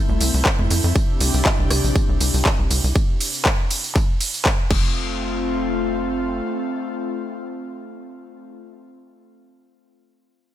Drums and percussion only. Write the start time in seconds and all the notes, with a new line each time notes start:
0.09 high conga
0.21 open hi-hat, ride, tambourine
0.34 tambourine
0.45 kick, clap, ride, tambourine
0.59 high conga
0.70 open hi-hat, ride, tambourine
0.84 tambourine
0.96 kick, ride, tambourine
1.20 open hi-hat, ride, tambourine
1.34 tambourine
1.45 kick, clap, ride, tambourine
1.71 cross-stick, open hi-hat, ride, tambourine
1.84 tambourine
1.96 kick, ride, tambourine
2.21 open hi-hat, ride, tambourine
2.34 tambourine
2.45 kick, clap, ride, tambourine
2.71 open hi-hat, ride, tambourine
2.84 tambourine
2.96 kick, ride, tambourine
3.21 open hi-hat, ride, tambourine
3.34 tambourine
3.45 kick, clap, ride, tambourine
3.71 open hi-hat, ride, tambourine
3.84 tambourine
3.95 kick, clap, ride, tambourine
4.21 open hi-hat, ride, tambourine
4.34 tambourine
4.45 kick, clap, ride, tambourine
4.71 kick, crash